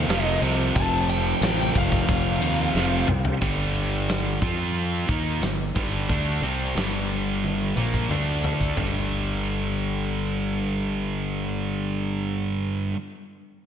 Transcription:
Already playing: distorted electric guitar F2 C3 F3, tonewheel organ F3 C4 G4, lead electric guitar F5
0.08 fingered electric bass F1, distorted electric guitar F2 C3 F3, snare, ride
0.23 lead electric guitar D#5
0.41 fingered electric bass C2, distorted electric guitar F2 C3 F3, ride
0.76 fingered electric bass F1, lead electric guitar A5, kick, ride
1.09 lead electric guitar G5, snare, ride
1.41 fingered electric bass A1, distorted electric guitar F2 C3 F3, snare, ride
1.75 fingered electric bass F1, lead electric guitar F5, kick, ride
1.92 kick
2.08 fingered electric bass F1, kick, ride
2.40 fingered electric bass D#2, distorted electric guitar F2 C3 F3, ride
2.74 fingered electric bass F1, distorted electric guitar F2 C3 F3, snare
3.08 fingered electric bass C2, mid tom
3.25 floor tom
3.41 fingered electric bass G1, distorted electric guitar G2 D3 G3, kick, open hi-hat
3.75 open hi-hat
4.09 snare, open hi-hat
4.42 fingered electric bass F2, distorted electric guitar F3 C4 F4, kick, open hi-hat
4.75 open hi-hat
5.08 fingered electric bass D#2, distorted electric guitar D#3 A#3 D#4, kick, open hi-hat
5.41 fingered electric bass G1, distorted electric guitar G2 D3, snare, open hi-hat
5.75 fingered electric bass G1, distorted electric guitar G2 D3 G3, kick, open hi-hat
6.09 fingered electric bass D2, distorted electric guitar D3 A3 D4, kick, open hi-hat
6.42 fingered electric bass C2, distorted electric guitar C3 G3 C4, open hi-hat
6.75 fingered electric bass G1, distorted electric guitar G2 D3 G3, snare, open hi-hat
7.10 open hi-hat
7.44 high tom
7.76 fingered electric bass A#1, distorted electric guitar A#2 F3 A#3, mid tom
7.94 kick
8.09 fingered electric bass D2, distorted electric guitar D3 A3 D4, mid tom
8.44 floor tom
8.61 kick
8.75 fingered electric bass G1, distorted electric guitar G2 D3 G3, kick, floor tom

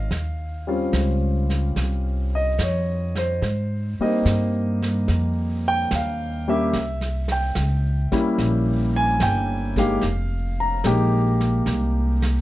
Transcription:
Already playing: grand piano D#5 F5
0.11 upright bass D#2, brush sweep, snare
0.67 grand piano G3 C4 C#4 F4
0.93 upright bass C#2, snare, hi-hat pedal
1.50 snare
1.76 upright bass C2, brush sweep, snare
2.35 grand piano D#5
2.58 upright bass F2, grand piano C#5, snare, hi-hat pedal
3.15 grand piano C5, snare
3.42 upright bass G#2, brush sweep, snare
3.99 grand piano G3 A#3 C4 D#4 D#5, muted upright bass stroke
4.25 upright bass G2, snare, hi-hat pedal
4.82 snare
5.08 upright bass F2, brush sweep, snare
5.68 grand piano G5
5.91 upright bass D#2, snare, hi-hat pedal
5.96 grand piano F5
6.48 grand piano G3 A#3 C#4 G4 E5
6.73 upright bass C2, brush sweep, snare
7.01 snare
7.28 grand piano G5, snare
7.55 upright bass C#2, snare, hi-hat pedal
8.12 grand piano G3 A#3 C#4 E4, muted upright bass stroke, kick, snare
8.38 upright bass A#1, brush sweep, snare
8.96 grand piano G#5
9.20 upright bass G1, grand piano G5, snare, hi-hat pedal
9.76 grand piano G#3 A#3 D#4 G4 F5, kick, snare
10.01 upright bass F1, brush sweep, snare
10.60 grand piano A#5
10.84 upright bass A#1, grand piano G#3 A#3 D#4 G4, snare, hi-hat pedal
11.41 snare
11.66 upright bass C2, brush sweep, snare
12.22 snare

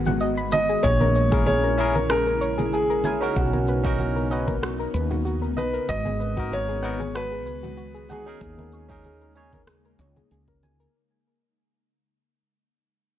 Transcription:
Already playing: fretless electric bass G#1, ambient pad D#3 G#3 B3 F#4
0.06 synth arpeggio sound F#5, high conga, low conga, cabasa
0.20 synth arpeggio sound D#5, cabasa
0.37 synth arpeggio sound B5, cabasa
0.52 grand piano D#5, synth arpeggio sound D#5, high conga, cabasa
0.69 synth arpeggio sound G#4, cabasa
0.83 fretless electric bass A#1, ambient pad C#3 C#4 E4, synth arpeggio sound G#4, grand piano C#5, kick, cabasa
1.01 synth arpeggio sound A#4, high conga, cabasa
1.15 synth arpeggio sound C#5, cabasa
1.32 tine electric piano C#4 E4 G#4 A#4, synth arpeggio sound G#4, kick, cabasa
1.46 synth arpeggio sound G#4, grand piano C#5, high conga, cabasa
1.64 synth arpeggio sound A#4, cabasa
1.77 tine electric piano C#4 E4 G#4 A#4, synth arpeggio sound G#5, cabasa
1.95 synth arpeggio sound A#4, high conga, cabasa
2.10 synth arpeggio sound G#4, grand piano A#4, cross-stick, cabasa
2.27 synth arpeggio sound A#4, cabasa
2.41 synth arpeggio sound C#5, cabasa
2.58 synth arpeggio sound G#4, high conga, low conga, cabasa
2.73 synth arpeggio sound G#4, grand piano G#4, cabasa
2.90 synth arpeggio sound A#4, cabasa
3.04 tine electric piano C#4 E4 G#4 A#4, synth arpeggio sound G#5, high conga, cabasa
3.21 tine electric piano C#4 D#4 F#4 A#4, synth arpeggio sound A#4, cabasa
3.35 fretless electric bass B1, ambient pad B3 D#4, synth arpeggio sound F#4, grand piano F#4, kick, cabasa
3.53 synth arpeggio sound A#4, high conga, cabasa
3.68 synth arpeggio sound B4, cabasa
3.83 tine electric piano C#4 D#4 F#4 A#4, synth arpeggio sound F#4, kick, cabasa
3.98 synth arpeggio sound F#4, high conga, cabasa
4.16 synth arpeggio sound A#4, cabasa
4.30 tine electric piano C#4 D#4 F#4 B4, synth arpeggio sound D#5, cabasa
4.47 synth arpeggio sound A#4, kick, high conga, cabasa
4.63 synth arpeggio sound F#4, cross-stick, cabasa
4.79 synth arpeggio sound A#4, cabasa
4.94 fretless electric bass D#2, synth arpeggio sound B4, cabasa
5.11 synth arpeggio sound F#4, high conga, low conga, cabasa
5.25 synth arpeggio sound F#4, cabasa
5.42 synth arpeggio sound A#4, cabasa
5.57 fretless electric bass B1, grand piano B4, synth arpeggio sound D#5, high conga, cabasa
5.73 synth arpeggio sound A#4, cabasa
5.88 fretless electric bass G#1, ambient pad D#3 G#3 F#4, synth arpeggio sound F#4, grand piano D#5, kick, cabasa
6.05 synth arpeggio sound G#4, high conga, cabasa
6.20 synth arpeggio sound B4, cabasa
6.37 tine electric piano B3 D#4 F#4 A#4, synth arpeggio sound F#4, kick, cabasa
6.52 synth arpeggio sound F#4, grand piano C#5, high conga, cabasa
6.69 synth arpeggio sound G#4, cabasa
6.83 tine electric piano B3 D#4 F#4 A#4, synth arpeggio sound F#5, cabasa
7.00 synth arpeggio sound G#4, high conga, cabasa
7.15 synth arpeggio sound F#4, grand piano B4, cross-stick, cabasa
7.32 synth arpeggio sound G#4, cabasa
7.46 fretless electric bass C#2, synth arpeggio sound B4, cabasa
7.63 synth arpeggio sound F#4, high conga, low conga, cabasa
7.77 synth arpeggio sound F#4, cabasa
7.94 synth arpeggio sound G#4, cabasa
8.09 tine electric piano B3 D#4 F#4 G#4, grand piano G#4, synth arpeggio sound F#5, high conga, cabasa
8.26 tine electric piano C#4 D#4 G#4 A#4, synth arpeggio sound G#4, cabasa
8.41 fretless electric bass D#2, ambient pad C#3 A#3 D#4, synth arpeggio sound G#4, kick, cabasa
8.57 synth arpeggio sound A#4, high conga, cabasa
8.72 synth arpeggio sound C#5, cabasa
8.89 tine electric piano C#4 D#4 G#4 A#4, synth arpeggio sound G#4, kick, cabasa
9.04 synth arpeggio sound G#4, high conga, cabasa
9.21 synth arpeggio sound A#4, cabasa
9.35 tine electric piano C#4 D#4 G#4 C#5, synth arpeggio sound G#5, cabasa
9.53 synth arpeggio sound A#4, kick, high conga, cabasa
9.67 synth arpeggio sound G#4, cross-stick, cabasa
9.84 synth arpeggio sound A#4, cabasa
9.99 fretless electric bass C#2, synth arpeggio sound C#5, cabasa
10.16 synth arpeggio sound G#4, high conga, low conga, cabasa
10.31 fretless electric bass C#2, synth arpeggio sound G#4, cabasa
10.48 synth arpeggio sound A#4, kick, cabasa
10.63 synth arpeggio sound G#5, high conga, cabasa
10.80 synth arpeggio sound A#4, cabasa

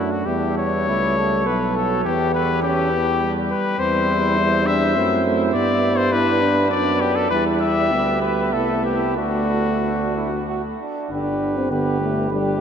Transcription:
Already playing: bass trombone F#2, trombone A3, french horn D4, flugelhorn D4, trumpet E4
0.12 trumpet F#4
0.26 bass trombone E2, trombone G3, french horn B3, flugelhorn E4, trumpet G4
0.58 trumpet C#5
0.88 bass trombone C#2, french horn A3, flugelhorn E4
1.17 flugelhorn A4
1.46 bass trombone B1, trombone F#3, french horn B3, trumpet B4
1.77 trumpet A4
2.04 bass trombone E2, trombone E3, french horn B3, trumpet G4, flugelhorn G4
2.34 trumpet B4
2.63 french horn C#4, trumpet G4
2.92 french horn B3
3.21 trombone G3
3.51 trumpet B4
3.78 bass trombone E2, trombone G3, french horn C4, flugelhorn E4, trumpet C5
4.37 french horn E4
4.66 french horn D4, trumpet E5
4.95 bass trombone F#2, trombone A3, french horn C4, flugelhorn E4
5.25 trombone A3
5.54 bass trombone G2, trombone B3, french horn B3, trumpet D5
5.98 trumpet C5
6.12 trombone B3, flugelhorn D4, french horn E4, trumpet B4
6.42 french horn D4
6.71 bass trombone F#2, french horn D4, trumpet D5
7.01 trumpet G4
7.16 trumpet A4
7.31 bass trombone E2, trombone G3, french horn E4, flugelhorn G4, trumpet B4
7.61 trumpet E5
7.91 bass trombone D2, trombone G3, french horn B3
8.22 french horn B3, trumpet B4
8.53 bass trombone C2, trombone A3, flugelhorn E4, trumpet A4
8.85 trumpet G4
9.17 bass trombone D2, french horn A3, trombone A3, flugelhorn D4, trumpet F#4
9.84 flugelhorn D4
10.16 flugelhorn E4
10.48 flugelhorn F#4
10.80 flugelhorn D4
11.10 bass trombone G1, trombone D3, french horn D4, flugelhorn G4, trumpet B4
11.57 french horn C4
11.71 trombone D3, french horn B3, flugelhorn G4, trumpet B4
12.01 french horn A3
12.30 trombone D3, french horn G3, flugelhorn G4, trumpet B4

